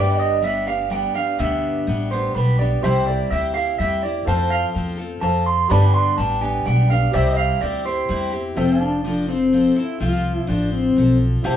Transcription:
Already playing: upright bass G1, steel-string acoustic guitar G2 D3 G3 B3 D4 G4, upright piano G4 B4 D5, clean electric guitar D5, pedal steel guitar E5 G5
0.20 pedal steel guitar D5, clean electric guitar D#5
0.42 steel-string acoustic guitar G3 B3 D4 G4, clean electric guitar E5
0.67 steel-string acoustic guitar G3 B3 D4 G4, clean electric guitar F5
0.90 steel-string acoustic guitar G3 B3 D4 G4, clean electric guitar G5
1.14 steel-string acoustic guitar G3 B3 D4 G4, clean electric guitar F5
1.38 upright bass D2, steel-string acoustic guitar G2 D3 G3 B3 D4 G4, clean electric guitar E5
1.87 upright bass A1, steel-string acoustic guitar G3 B3 D4 G4
2.11 steel-string acoustic guitar G3 B3 D4 G4, clean electric guitar C5
2.35 upright bass B1, steel-string acoustic guitar G3 B3 D4 G4, clean electric guitar B4
2.59 steel-string acoustic guitar G3 B3 D4 G4, clean electric guitar D5
2.81 upright bass C2, steel-string acoustic guitar C3 G3 C4, upright piano G4 C5 E5, clean electric guitar C5, pedal steel guitar E5 G5
2.85 steel-string acoustic guitar E4 G4
3.07 clean electric guitar D5
3.31 upright bass D2, steel-string acoustic guitar G3 C4 E4 G4, clean electric guitar E5
3.54 steel-string acoustic guitar E4 G4, clean electric guitar F5
3.59 steel-string acoustic guitar C4
3.79 upright bass E2, steel-string acoustic guitar G3 C4 E4, clean electric guitar E5
3.83 steel-string acoustic guitar G4
4.03 steel-string acoustic guitar C4 E4 G4, clean electric guitar D5
4.25 upright bass F2, steel-string acoustic guitar F3 C4 F4, upright piano A4 C5 F5, clean electric guitar C5, pedal steel guitar F5 A5
4.29 steel-string acoustic guitar A4
4.50 clean electric guitar F5
4.75 upright bass E2, steel-string acoustic guitar F3 C4 F4 A4
4.97 steel-string acoustic guitar C4 F4 A4
5.21 upright bass F2, steel-string acoustic guitar F3 C4 F4 A4, upright piano A4 C5 F5, clean electric guitar A5
5.46 clean electric guitar C6
5.68 steel-string acoustic guitar G2 D3 G3 B3 D4 G4, upright bass G2, upright piano G4 B4 D5, pedal steel guitar D5 A5, clean electric guitar B5
5.94 pedal steel guitar G5, clean electric guitar C6
6.18 upright bass A1, steel-string acoustic guitar G3 B3 D4 G4, clean electric guitar A5
6.41 steel-string acoustic guitar G3 B3 D4 G4, clean electric guitar G#5
6.65 upright bass B1, steel-string acoustic guitar G3 B3 D4 G4, clean electric guitar G5
6.90 steel-string acoustic guitar G3 B3 D4 G4, clean electric guitar F5
7.11 upright bass C2, steel-string acoustic guitar C3 G3 C4 E4, upright piano G4 C5 E5, pedal steel guitar D5 G5, clean electric guitar E5
7.15 steel-string acoustic guitar G4
7.37 pedal steel guitar E5, clean electric guitar F5
7.61 upright bass D2, steel-string acoustic guitar G3 C4 E4 G4, clean electric guitar D5
7.85 steel-string acoustic guitar C4 E4 G4, clean electric guitar C5
8.09 upright bass E2, steel-string acoustic guitar G3 C4 E4 G4
8.33 steel-string acoustic guitar C4 E4 G4
8.56 upright bass F1, steel-string acoustic guitar F3 C4 F4 A4, pedal steel guitar C4 E5 G5, upright piano F4 A4 C5
8.77 pedal steel guitar D4 F5
8.83 pedal steel guitar A5
9.04 steel-string acoustic guitar F3 C4 F4, pedal steel guitar D4
9.08 steel-string acoustic guitar A4
9.29 pedal steel guitar C4, steel-string acoustic guitar C4 F4 A4
9.53 steel-string acoustic guitar F3 C4 F4 A4
9.76 steel-string acoustic guitar C4 F4 A4, pedal steel guitar E4
10.00 upright bass C2, steel-string acoustic guitar F3 C4 F4 A4, pedal steel guitar F4
10.38 pedal steel guitar E4
10.47 upright bass A1, steel-string acoustic guitar F3 C4 F4 A4, pedal steel guitar D4
10.73 pedal steel guitar C4
10.96 upright bass B1, steel-string acoustic guitar F3 C4 F4 A4
11.42 upright bass C2, steel-string acoustic guitar C3 G3 C4 E4 G4, upright piano E4 G4 C5, pedal steel guitar G4 F5 A5

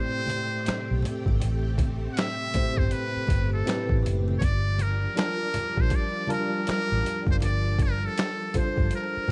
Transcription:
Already playing: tine electric piano A2 A3 C4 G4 C5 D5, string machine C3 A3 C4 G4, muted trumpet C5
0.27 closed hi-hat, muted conga, high conga
0.66 finger snap, muted fingered electric bass stroke, snare, closed hi-hat, muted conga
0.91 fingered electric bass B1
1.02 closed hi-hat, muted conga, low conga
1.26 fingered electric bass G#1, kick, high conga
1.40 fingered electric bass A1, closed hi-hat, low conga
1.78 kick, closed hi-hat, muted conga, high conga
2.13 muted trumpet F#5
2.17 muted trumpet E5, finger snap, snare, closed hi-hat
2.54 tine electric piano A2 A3 C4 G4 C5, muted fingered electric bass stroke, kick, closed hi-hat, muted conga, high conga, low conga
2.77 fingered electric bass G1, muted trumpet C5, kick
2.91 muted trumpet B4, closed hi-hat, muted conga
3.16 muted fingered electric bass stroke
3.27 fingered electric bass G1, kick, closed hi-hat, high conga
3.53 muted trumpet A4
3.65 tine electric piano A2 A3 C4 G4 B4, snare, closed hi-hat, muted conga
3.70 finger snap
3.89 fingered electric bass A1, kick
4.03 fingered electric bass F#1, closed hi-hat, low conga
4.28 high conga
4.39 fingered electric bass G1, string machine F3 G3 D4, muted trumpet C#5, kick, closed hi-hat, low conga
4.45 muted trumpet D5
4.79 muted trumpet A#4, closed hi-hat, high conga
5.16 tine electric piano G3 D4 F4 A#4 A5, finger snap, snare, closed hi-hat, muted conga
5.20 muted trumpet A#4
5.54 muted fingered electric bass stroke, closed hi-hat, high conga, low conga
5.77 fingered electric bass A#1, muted trumpet C5, kick
5.90 kick, closed hi-hat
5.95 muted trumpet D5
6.27 tine electric piano G3 D4 F4 A#4 A5, closed hi-hat, muted conga, high conga
6.33 muted trumpet A#4
6.67 muted trumpet A#4, finger snap, muted fingered electric bass stroke, snare, closed hi-hat
6.92 fingered electric bass A1
7.02 closed hi-hat, muted conga, low conga
7.27 fingered electric bass F#1, kick, high conga
7.31 muted trumpet C5
7.40 fingered electric bass G1, string machine A5, closed hi-hat, muted conga, low conga
7.45 muted trumpet D5
7.79 kick, closed hi-hat, muted conga, high conga
7.83 muted trumpet A#4
8.06 muted trumpet A4
8.18 finger snap, snare, closed hi-hat
8.54 tine electric piano G3 D4 F4 A4 C5, muted fingered electric bass stroke, kick, closed hi-hat, muted conga, high conga, low conga
8.58 muted trumpet C5
8.77 fingered electric bass G1, kick
8.91 closed hi-hat, muted conga
8.96 muted trumpet A#4
9.17 muted fingered electric bass stroke
9.28 kick, high conga

